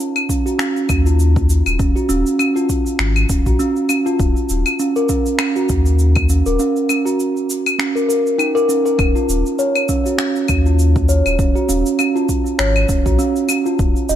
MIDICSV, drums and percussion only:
0, 0, Header, 1, 2, 480
1, 0, Start_track
1, 0, Key_signature, -6, "minor"
1, 0, Tempo, 600000
1, 1436, Time_signature, 4, 2, 24, 8
1, 11325, End_track
2, 0, Start_track
2, 0, Title_t, "Drums"
2, 0, Note_on_c, 9, 69, 47
2, 79, Note_off_c, 9, 69, 0
2, 127, Note_on_c, 9, 75, 75
2, 131, Note_on_c, 9, 69, 23
2, 207, Note_off_c, 9, 75, 0
2, 211, Note_off_c, 9, 69, 0
2, 235, Note_on_c, 9, 36, 62
2, 239, Note_on_c, 9, 69, 74
2, 315, Note_off_c, 9, 36, 0
2, 319, Note_off_c, 9, 69, 0
2, 374, Note_on_c, 9, 69, 35
2, 454, Note_off_c, 9, 69, 0
2, 474, Note_on_c, 9, 26, 72
2, 478, Note_on_c, 9, 69, 42
2, 554, Note_off_c, 9, 26, 0
2, 558, Note_off_c, 9, 69, 0
2, 612, Note_on_c, 9, 69, 21
2, 692, Note_off_c, 9, 69, 0
2, 712, Note_on_c, 9, 75, 75
2, 715, Note_on_c, 9, 36, 106
2, 716, Note_on_c, 9, 69, 83
2, 792, Note_off_c, 9, 75, 0
2, 795, Note_off_c, 9, 36, 0
2, 796, Note_off_c, 9, 69, 0
2, 850, Note_on_c, 9, 69, 33
2, 930, Note_off_c, 9, 69, 0
2, 956, Note_on_c, 9, 69, 43
2, 1036, Note_off_c, 9, 69, 0
2, 1090, Note_on_c, 9, 36, 112
2, 1092, Note_on_c, 9, 69, 22
2, 1170, Note_off_c, 9, 36, 0
2, 1172, Note_off_c, 9, 69, 0
2, 1197, Note_on_c, 9, 69, 79
2, 1277, Note_off_c, 9, 69, 0
2, 1330, Note_on_c, 9, 75, 73
2, 1333, Note_on_c, 9, 69, 33
2, 1410, Note_off_c, 9, 75, 0
2, 1413, Note_off_c, 9, 69, 0
2, 1436, Note_on_c, 9, 36, 111
2, 1437, Note_on_c, 9, 69, 42
2, 1516, Note_off_c, 9, 36, 0
2, 1517, Note_off_c, 9, 69, 0
2, 1573, Note_on_c, 9, 69, 21
2, 1653, Note_off_c, 9, 69, 0
2, 1675, Note_on_c, 9, 69, 77
2, 1755, Note_off_c, 9, 69, 0
2, 1812, Note_on_c, 9, 69, 34
2, 1892, Note_off_c, 9, 69, 0
2, 1915, Note_on_c, 9, 75, 83
2, 1919, Note_on_c, 9, 69, 45
2, 1995, Note_off_c, 9, 75, 0
2, 1999, Note_off_c, 9, 69, 0
2, 2053, Note_on_c, 9, 69, 22
2, 2133, Note_off_c, 9, 69, 0
2, 2156, Note_on_c, 9, 36, 57
2, 2156, Note_on_c, 9, 69, 76
2, 2236, Note_off_c, 9, 36, 0
2, 2236, Note_off_c, 9, 69, 0
2, 2291, Note_on_c, 9, 69, 33
2, 2371, Note_off_c, 9, 69, 0
2, 2392, Note_on_c, 9, 26, 68
2, 2396, Note_on_c, 9, 69, 42
2, 2472, Note_off_c, 9, 26, 0
2, 2476, Note_off_c, 9, 69, 0
2, 2528, Note_on_c, 9, 75, 73
2, 2532, Note_on_c, 9, 69, 21
2, 2608, Note_off_c, 9, 75, 0
2, 2612, Note_off_c, 9, 69, 0
2, 2636, Note_on_c, 9, 36, 94
2, 2636, Note_on_c, 9, 69, 81
2, 2716, Note_off_c, 9, 36, 0
2, 2716, Note_off_c, 9, 69, 0
2, 2770, Note_on_c, 9, 69, 32
2, 2771, Note_on_c, 9, 36, 62
2, 2850, Note_off_c, 9, 69, 0
2, 2851, Note_off_c, 9, 36, 0
2, 2877, Note_on_c, 9, 69, 40
2, 2957, Note_off_c, 9, 69, 0
2, 3010, Note_on_c, 9, 69, 21
2, 3090, Note_off_c, 9, 69, 0
2, 3112, Note_on_c, 9, 75, 81
2, 3116, Note_on_c, 9, 69, 78
2, 3192, Note_off_c, 9, 75, 0
2, 3196, Note_off_c, 9, 69, 0
2, 3252, Note_on_c, 9, 69, 31
2, 3332, Note_off_c, 9, 69, 0
2, 3356, Note_on_c, 9, 36, 113
2, 3357, Note_on_c, 9, 69, 42
2, 3436, Note_off_c, 9, 36, 0
2, 3437, Note_off_c, 9, 69, 0
2, 3492, Note_on_c, 9, 69, 23
2, 3572, Note_off_c, 9, 69, 0
2, 3594, Note_on_c, 9, 69, 71
2, 3674, Note_off_c, 9, 69, 0
2, 3726, Note_on_c, 9, 75, 83
2, 3730, Note_on_c, 9, 69, 33
2, 3806, Note_off_c, 9, 75, 0
2, 3810, Note_off_c, 9, 69, 0
2, 3836, Note_on_c, 9, 69, 42
2, 3916, Note_off_c, 9, 69, 0
2, 3969, Note_on_c, 9, 69, 21
2, 4049, Note_off_c, 9, 69, 0
2, 4073, Note_on_c, 9, 69, 73
2, 4076, Note_on_c, 9, 36, 58
2, 4153, Note_off_c, 9, 69, 0
2, 4156, Note_off_c, 9, 36, 0
2, 4207, Note_on_c, 9, 69, 33
2, 4287, Note_off_c, 9, 69, 0
2, 4309, Note_on_c, 9, 26, 77
2, 4309, Note_on_c, 9, 75, 82
2, 4313, Note_on_c, 9, 69, 43
2, 4389, Note_off_c, 9, 26, 0
2, 4389, Note_off_c, 9, 75, 0
2, 4393, Note_off_c, 9, 69, 0
2, 4449, Note_on_c, 9, 69, 19
2, 4529, Note_off_c, 9, 69, 0
2, 4552, Note_on_c, 9, 69, 74
2, 4556, Note_on_c, 9, 36, 91
2, 4632, Note_off_c, 9, 69, 0
2, 4636, Note_off_c, 9, 36, 0
2, 4686, Note_on_c, 9, 69, 35
2, 4766, Note_off_c, 9, 69, 0
2, 4792, Note_on_c, 9, 69, 44
2, 4872, Note_off_c, 9, 69, 0
2, 4924, Note_on_c, 9, 75, 81
2, 4928, Note_on_c, 9, 69, 21
2, 4930, Note_on_c, 9, 36, 106
2, 5004, Note_off_c, 9, 75, 0
2, 5008, Note_off_c, 9, 69, 0
2, 5010, Note_off_c, 9, 36, 0
2, 5034, Note_on_c, 9, 69, 73
2, 5114, Note_off_c, 9, 69, 0
2, 5169, Note_on_c, 9, 69, 31
2, 5249, Note_off_c, 9, 69, 0
2, 5275, Note_on_c, 9, 69, 43
2, 5355, Note_off_c, 9, 69, 0
2, 5411, Note_on_c, 9, 69, 22
2, 5491, Note_off_c, 9, 69, 0
2, 5514, Note_on_c, 9, 75, 80
2, 5518, Note_on_c, 9, 69, 73
2, 5594, Note_off_c, 9, 75, 0
2, 5598, Note_off_c, 9, 69, 0
2, 5653, Note_on_c, 9, 69, 35
2, 5733, Note_off_c, 9, 69, 0
2, 5758, Note_on_c, 9, 69, 44
2, 5838, Note_off_c, 9, 69, 0
2, 5894, Note_on_c, 9, 69, 22
2, 5974, Note_off_c, 9, 69, 0
2, 5999, Note_on_c, 9, 69, 76
2, 6079, Note_off_c, 9, 69, 0
2, 6131, Note_on_c, 9, 75, 93
2, 6135, Note_on_c, 9, 69, 33
2, 6211, Note_off_c, 9, 75, 0
2, 6215, Note_off_c, 9, 69, 0
2, 6236, Note_on_c, 9, 26, 76
2, 6240, Note_on_c, 9, 69, 40
2, 6316, Note_off_c, 9, 26, 0
2, 6320, Note_off_c, 9, 69, 0
2, 6374, Note_on_c, 9, 69, 21
2, 6454, Note_off_c, 9, 69, 0
2, 6480, Note_on_c, 9, 69, 78
2, 6560, Note_off_c, 9, 69, 0
2, 6613, Note_on_c, 9, 69, 33
2, 6693, Note_off_c, 9, 69, 0
2, 6714, Note_on_c, 9, 75, 83
2, 6718, Note_on_c, 9, 69, 43
2, 6794, Note_off_c, 9, 75, 0
2, 6798, Note_off_c, 9, 69, 0
2, 6855, Note_on_c, 9, 69, 21
2, 6935, Note_off_c, 9, 69, 0
2, 6956, Note_on_c, 9, 69, 77
2, 7036, Note_off_c, 9, 69, 0
2, 7089, Note_on_c, 9, 69, 30
2, 7169, Note_off_c, 9, 69, 0
2, 7190, Note_on_c, 9, 75, 83
2, 7192, Note_on_c, 9, 36, 114
2, 7194, Note_on_c, 9, 69, 44
2, 7270, Note_off_c, 9, 75, 0
2, 7272, Note_off_c, 9, 36, 0
2, 7274, Note_off_c, 9, 69, 0
2, 7328, Note_on_c, 9, 69, 23
2, 7408, Note_off_c, 9, 69, 0
2, 7434, Note_on_c, 9, 69, 77
2, 7514, Note_off_c, 9, 69, 0
2, 7569, Note_on_c, 9, 69, 37
2, 7649, Note_off_c, 9, 69, 0
2, 7672, Note_on_c, 9, 69, 50
2, 7752, Note_off_c, 9, 69, 0
2, 7804, Note_on_c, 9, 75, 82
2, 7808, Note_on_c, 9, 69, 21
2, 7884, Note_off_c, 9, 75, 0
2, 7888, Note_off_c, 9, 69, 0
2, 7910, Note_on_c, 9, 69, 77
2, 7912, Note_on_c, 9, 36, 61
2, 7990, Note_off_c, 9, 69, 0
2, 7992, Note_off_c, 9, 36, 0
2, 8048, Note_on_c, 9, 69, 36
2, 8128, Note_off_c, 9, 69, 0
2, 8148, Note_on_c, 9, 26, 78
2, 8152, Note_on_c, 9, 69, 44
2, 8228, Note_off_c, 9, 26, 0
2, 8232, Note_off_c, 9, 69, 0
2, 8286, Note_on_c, 9, 69, 20
2, 8366, Note_off_c, 9, 69, 0
2, 8387, Note_on_c, 9, 75, 90
2, 8391, Note_on_c, 9, 69, 78
2, 8392, Note_on_c, 9, 36, 101
2, 8467, Note_off_c, 9, 75, 0
2, 8471, Note_off_c, 9, 69, 0
2, 8472, Note_off_c, 9, 36, 0
2, 8528, Note_on_c, 9, 69, 33
2, 8608, Note_off_c, 9, 69, 0
2, 8633, Note_on_c, 9, 69, 47
2, 8713, Note_off_c, 9, 69, 0
2, 8767, Note_on_c, 9, 36, 109
2, 8767, Note_on_c, 9, 69, 21
2, 8847, Note_off_c, 9, 36, 0
2, 8847, Note_off_c, 9, 69, 0
2, 8872, Note_on_c, 9, 69, 85
2, 8952, Note_off_c, 9, 69, 0
2, 9006, Note_on_c, 9, 75, 75
2, 9010, Note_on_c, 9, 69, 31
2, 9086, Note_off_c, 9, 75, 0
2, 9090, Note_off_c, 9, 69, 0
2, 9111, Note_on_c, 9, 36, 118
2, 9113, Note_on_c, 9, 69, 48
2, 9191, Note_off_c, 9, 36, 0
2, 9193, Note_off_c, 9, 69, 0
2, 9249, Note_on_c, 9, 69, 24
2, 9329, Note_off_c, 9, 69, 0
2, 9354, Note_on_c, 9, 69, 85
2, 9434, Note_off_c, 9, 69, 0
2, 9488, Note_on_c, 9, 69, 39
2, 9568, Note_off_c, 9, 69, 0
2, 9591, Note_on_c, 9, 75, 86
2, 9594, Note_on_c, 9, 69, 48
2, 9671, Note_off_c, 9, 75, 0
2, 9674, Note_off_c, 9, 69, 0
2, 9731, Note_on_c, 9, 69, 24
2, 9811, Note_off_c, 9, 69, 0
2, 9832, Note_on_c, 9, 36, 62
2, 9833, Note_on_c, 9, 69, 80
2, 9912, Note_off_c, 9, 36, 0
2, 9913, Note_off_c, 9, 69, 0
2, 9969, Note_on_c, 9, 69, 40
2, 10049, Note_off_c, 9, 69, 0
2, 10072, Note_on_c, 9, 26, 76
2, 10076, Note_on_c, 9, 69, 46
2, 10152, Note_off_c, 9, 26, 0
2, 10156, Note_off_c, 9, 69, 0
2, 10206, Note_on_c, 9, 75, 76
2, 10210, Note_on_c, 9, 69, 23
2, 10286, Note_off_c, 9, 75, 0
2, 10290, Note_off_c, 9, 69, 0
2, 10312, Note_on_c, 9, 36, 101
2, 10312, Note_on_c, 9, 69, 86
2, 10392, Note_off_c, 9, 36, 0
2, 10392, Note_off_c, 9, 69, 0
2, 10447, Note_on_c, 9, 36, 71
2, 10448, Note_on_c, 9, 69, 38
2, 10527, Note_off_c, 9, 36, 0
2, 10528, Note_off_c, 9, 69, 0
2, 10554, Note_on_c, 9, 69, 44
2, 10634, Note_off_c, 9, 69, 0
2, 10688, Note_on_c, 9, 69, 23
2, 10768, Note_off_c, 9, 69, 0
2, 10789, Note_on_c, 9, 75, 80
2, 10793, Note_on_c, 9, 69, 84
2, 10869, Note_off_c, 9, 75, 0
2, 10873, Note_off_c, 9, 69, 0
2, 10929, Note_on_c, 9, 69, 35
2, 11009, Note_off_c, 9, 69, 0
2, 11034, Note_on_c, 9, 36, 123
2, 11034, Note_on_c, 9, 69, 46
2, 11114, Note_off_c, 9, 36, 0
2, 11114, Note_off_c, 9, 69, 0
2, 11169, Note_on_c, 9, 69, 25
2, 11249, Note_off_c, 9, 69, 0
2, 11274, Note_on_c, 9, 69, 82
2, 11325, Note_off_c, 9, 69, 0
2, 11325, End_track
0, 0, End_of_file